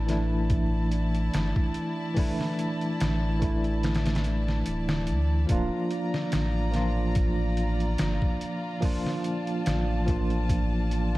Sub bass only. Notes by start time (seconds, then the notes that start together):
Already playing: A1
1.35 G1
3.01 A1
4.67 D1
5.09 D2
5.50 D1
6.34 A1
8.01 G1
9.67 A1